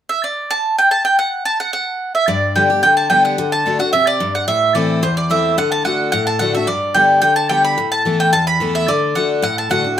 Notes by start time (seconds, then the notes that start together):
0.09 E5
0.24 D5
0.51 A5
0.78 G5
0.91 A5
1.05 G5
1.19 F#5
1.45 A5
1.60 F#5
1.73 F#5
2.15 E5
2.28 G2 D5
2.56 D3 G3 B3 G4 G5
2.70 B3 G4
2.83 D3 G5
2.97 A5
3.10 D3 G3 B3 G4 G5
3.25 F#5
3.38 D3
3.52 A5
3.66 D3 A3 D4 F#4
3.79 D4 F#4 F#5
3.93 C3 E5
4.07 D5
4.20 G2
4.35 F#5
4.48 A2 E5
4.75 E3 A3 C4 E4 D5
5.03 E2 C5
5.17 D5
5.30 E3 A3 C4 E4 E5
5.58 D3 F#5
5.72 A5
5.85 D3 A3 D4 F#4 F#5
6.12 A2 F#5
6.27 A5
6.39 D3 A3 D4 F#4 F#5
6.55 D4 F#4 E5
6.67 G2 D5
6.94 D3 G3 B3 G4 G5
7.22 D3 G5
7.36 A5
7.49 D3 G3 B3 G4 G5
7.65 B5
7.78 A2
7.92 A5
8.05 E3 A3 B3 E4
8.20 G5
8.33 E2 A5
8.47 B5
8.60 E3 A3 B3 E4
8.75 E5
8.88 D3 D5
9.15 D3 A3 D4 F#4 F#5
9.42 A2 F#5
9.58 A5
9.69 D3 A3 D4 F#4 F#5
9.84 D4 F#4